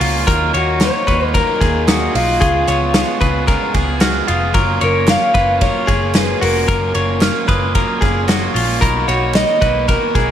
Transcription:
Already playing: glockenspiel C#6
0.00 picked electric bass C#2, overdriven electric guitar A#3 C#4 F4, clean electric guitar F4, open hi-hat, ride
0.26 picked electric bass D#2, overdriven electric guitar D#3 F#3 A#3 D#4 F4, clean electric guitar A#4, glockenspiel F6, kick, hi-hat pedal, ride
0.53 picked electric bass D#2, overdriven electric guitar A#3 D#4 F4, clean electric guitar F#4 C#5, ride
0.81 overdriven electric guitar F#3 A#3 D#4 F4, clean electric guitar C#5, snare, clap, ride
1.07 picked electric bass D#2, overdriven electric guitar A#3 D#4 F4, clean electric guitar B4, kick, ride
1.34 overdriven electric guitar D#3 F#3 A#3 D#4 F4, clean electric guitar A#4, kick, ride
1.61 picked electric bass D#2, overdriven electric guitar A#3 D#4 F4, clean electric guitar G#4, kick, ride
1.88 overdriven electric guitar F#3 A#3 D#4 F4, clean electric guitar F#4, glockenspiel D#6, snare, clap, ride
2.15 picked electric bass B1, overdriven electric guitar A#3 D#4 F4, clean electric guitar F4 F#4, open hi-hat, ride
2.41 picked electric bass C#2, overdriven electric guitar C#3 G#3 B3 F4 G#4, clean electric guitar G#4, glockenspiel C#6, kick, hi-hat pedal, ride
2.68 picked electric bass C#2, overdriven electric guitar B3 F4 G#4, clean electric guitar C#5, clap, ride
2.94 overdriven electric guitar G#3 B3 F4 G#4, snare, clap, ride
3.21 picked electric bass C#2, overdriven electric guitar B3 F4 G#4, clean electric guitar B4, kick, ride
3.47 overdriven electric guitar C#3 G#3 B3 F4 G#4, clean electric guitar A#4, kick, ride
3.74 picked electric bass C#2, overdriven electric guitar B3 F4 G#4, clean electric guitar G#4, kick, ride
4.01 overdriven electric guitar G#3 B3 F4 G#4, clean electric guitar F#4, glockenspiel F6, snare, clap, ride
4.28 picked electric bass F1, overdriven electric guitar B3 F4 G#4, clean electric guitar F4, glockenspiel D#6, ride
4.54 picked electric bass F#1, overdriven electric guitar F#3 A#3 C#4 F4, clean electric guitar A#4, glockenspiel C#6, kick, ride
4.81 picked electric bass F#1, overdriven electric guitar A#3 C#4 F4, clean electric guitar A#4 C#5, ride
5.07 overdriven electric guitar F#3 A#3 C#4 F4, clean electric guitar F5, snare, clap, ride
5.34 picked electric bass F#1, overdriven electric guitar A#3 C#4 F4, clean electric guitar B4, kick, ride
5.61 overdriven electric guitar F#3 A#3 C#4 F4, clean electric guitar A#4 C#5, kick, ride
5.87 picked electric bass F#1, overdriven electric guitar A#3 C#4 F4, clean electric guitar G#4, kick, ride
6.14 overdriven electric guitar F#3 A#3 C#4 F4, clean electric guitar B4, snare, clap, ride
6.41 picked electric bass F1, overdriven electric guitar A#3 C#4 F4, clean electric guitar F#4 A#4, open hi-hat, ride
6.68 picked electric bass F#1, overdriven electric guitar F#3 A#3 C#4 F4, clean electric guitar A#4, kick, ride
6.94 picked electric bass F#1, overdriven electric guitar A#3 C#4 F4, clean electric guitar C#5, ride
7.21 overdriven electric guitar F#3 A#3 C#4 F4, glockenspiel F6, snare, clap, ride
7.48 picked electric bass F#1, overdriven electric guitar A#3 C#4 F4, clean electric guitar B4, glockenspiel D#6, kick, ride
7.75 overdriven electric guitar F#3 A#3 C#4 F4, clean electric guitar A#4, kick, ride
8.01 picked electric bass F#1, overdriven electric guitar A#3 C#4 F4, clean electric guitar G#4, kick, ride
8.28 overdriven electric guitar F#3 A#3 C#4 F4, clean electric guitar F#4, glockenspiel C#6, snare, clap, ride
8.54 picked electric bass A#1, overdriven electric guitar A#3 C#4 F4, clean electric guitar F4, glockenspiel C#6, open hi-hat, ride
8.81 picked electric bass B1, overdriven electric guitar B2 D#3 A#3 D#4 F#4, clean electric guitar A#4, glockenspiel B5, kick, hi-hat pedal, ride
9.07 picked electric bass B1, overdriven electric guitar A#3 D#4 F#4, clean electric guitar F#4 C#5, ride
9.34 overdriven electric guitar D#3 A#3 D#4 F#4, clean electric guitar D#5, snare, clap, ride
9.61 picked electric bass B1, overdriven electric guitar A#3 D#4 F#4, clean electric guitar B4, kick, ride
9.88 overdriven electric guitar B2 D#3 A#3 D#4 F#4, clean electric guitar A#4, glockenspiel A#5, kick, ride
10.15 picked electric bass B1, overdriven electric guitar A#3 D#4 F#4, clean electric guitar G#4, kick, ride

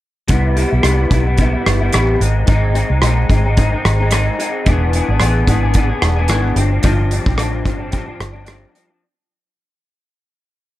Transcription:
0.28 fingered electric bass C2, clean electric guitar C3 G3 B3 E4, kick, closed hi-hat
0.56 clean electric guitar C3 G3 B3 E4, closed hi-hat
0.71 fingered electric bass B1, clean electric guitar G3 B3 E4
0.82 fingered electric bass C2, clean electric guitar C3 G3 B3 E4, cross-stick, closed hi-hat
1.10 fingered electric bass B1, clean electric guitar C3 G3 B3 E4, kick, closed hi-hat
1.25 clean electric guitar G3 B3 E4
1.37 clean electric guitar C3 G3 B3 E4, kick, closed hi-hat
1.53 clean electric guitar G3 B3 E4
1.66 fingered electric bass G1, cross-stick, closed hi-hat
1.80 clean electric guitar G3 B3 E4
1.93 fingered electric bass A1, clean electric guitar C3 G3 B3 E4, cross-stick, closed hi-hat
2.20 fingered electric bass G#1, clean electric guitar G#2 G#3 C4 D#4, closed hi-hat
2.46 fingered electric bass G#1, clean electric guitar G#2 G#3 C4 D#4, kick, closed hi-hat
2.73 clean electric guitar G#2 G#3 C4 D#4, closed hi-hat
2.88 fingered electric bass C2, clean electric guitar G#3 C4 D#4
3.02 fingered electric bass A#1, clean electric guitar G#2 G#3 C4 D#4, cross-stick, closed hi-hat
3.29 fingered electric bass G#1, clean electric guitar G#2 G#3 C4 D#4, kick, closed hi-hat
3.44 clean electric guitar G#3 C4 D#4
3.56 clean electric guitar G#2 G#3 C4 D#4, kick, closed hi-hat
3.73 clean electric guitar G#3 C4 D#4
3.85 fingered electric bass G#1, cross-stick, closed hi-hat
3.99 clean electric guitar G#3 C4 D#4
4.11 clean electric guitar G#2 G#3 C4 D#4, cross-stick, closed hi-hat
4.38 clean electric guitar G#2 G#3 C4 D#4, closed hi-hat
4.66 fingered electric bass E1, clean electric guitar E3 B3 D4 G#4, kick, closed hi-hat
4.93 clean electric guitar E3 B3 D4 G#4, closed hi-hat
5.08 fingered electric bass G#1, clean electric guitar B3 D4 G#4
5.20 fingered electric bass A1, clean electric guitar E3 B3 D4 G#4, cross-stick, closed hi-hat
5.47 fingered electric bass G#1, clean electric guitar E3 B3 D4 G#4, kick, closed hi-hat
5.63 clean electric guitar B3 D4 G#4
5.74 clean electric guitar E3 B3 D4 G#4, kick, closed hi-hat
5.89 clean electric guitar B3 D4 G#4
6.02 fingered electric bass E1, cross-stick, closed hi-hat
6.16 clean electric guitar B3 D4 G#4
6.28 fingered electric bass G#1, clean electric guitar E3 B3 D4 G#4, cross-stick, closed hi-hat
6.55 fingered electric bass G1, clean electric guitar G2 F3 C4 D4, closed hi-hat
6.70 clean electric guitar F3 C4 D4
6.82 fingered electric bass G1, clean electric guitar G2 F3 C4 D4, kick, closed hi-hat
7.10 clean electric guitar G2 F3 C4 D4, closed hi-hat
7.26 fingered electric bass B1, clean electric guitar F3 C4 D4, kick
7.37 fingered electric bass A1, clean electric guitar G2 F3 C4 D4, cross-stick, closed hi-hat
7.63 fingered electric bass G1, clean electric guitar G2 F3 C4 D4, kick, closed hi-hat
7.79 clean electric guitar F3 C4 D4
7.91 clean electric guitar G2 F3 C4 D4, kick, closed hi-hat
8.05 clean electric guitar F3 C4 D4
8.20 fingered electric bass G1, cross-stick, closed hi-hat
8.32 clean electric guitar F3 C4 D4
8.44 clean electric guitar G2 F3 C4 D4, cross-stick, closed hi-hat
8.73 clean electric guitar G2 F3 C4 D4, closed hi-hat
8.88 clean electric guitar F3 C4 D4

